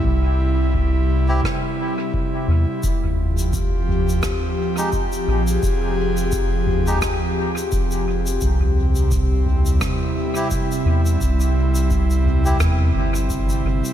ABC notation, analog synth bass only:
X:1
M:4/4
L:1/8
Q:"Swing 16ths" 1/4=86
K:Fm
V:1 name="Analog synth bass" clef=bass
C,,4 z3 =E,, | F,,,4 z3 B,,, | F,,,4 z2 F,,,2 | C,,4 z3 =E,, |
C,,4 =E,, G,,,2 G,,, |]